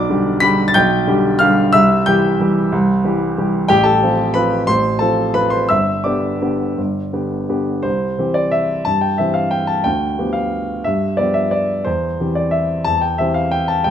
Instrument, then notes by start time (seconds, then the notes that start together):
grand piano
Already playing: B1 D5 D6
0.09 D3 G3 G4
0.40 D3 G3 G4 B5 B6
0.68 A6
0.74 B1 G5 G6
1.07 D3 G3 G4
1.39 D3 G3 G4 F5 F6
1.73 C2 E5 E6
2.06 E3 G3 G4 G5 G6
2.40 E3 G3 G4
2.72 C2
3.04 E3 G3 G4
3.38 E3 G3 G4
3.68 A1 G4 G5
3.83 A4 A5
4.03 F3 C4 F4
4.34 F3 C4 F4 B4 B5
4.67 A1 C5 C6
4.99 F3 C4 F4 A4 A5
5.34 F3 C4 F4 B4 B5
5.50 C5 C6
5.69 G1 E5 E6
6.04 D3 B3 G4 D5 D6
6.41 D3 B3 G4
6.78 G1
7.13 D3 B3 G4
7.49 D3 B3 G4
7.83 C2 C5
8.18 E3 C4 G4
8.34 D5
8.51 E5
8.85 G2 A5
9.01 G5
9.18 E3 C4 G4 E5
9.34 F5
9.51 G5
9.67 A5
9.84 D2 G5
10.18 F3 B3 G4
10.33 F5
10.84 G2 E5
11.17 F3 B3 G4 D5
11.34 E5
11.51 D5
11.84 E2 C5
12.20 E3 C4 G4
12.35 D5
12.51 E5
12.84 E2 A5
13.01 G5
13.18 E3 C4 G4 E5
13.34 F5
13.51 G5
13.68 A5
13.84 C2 G5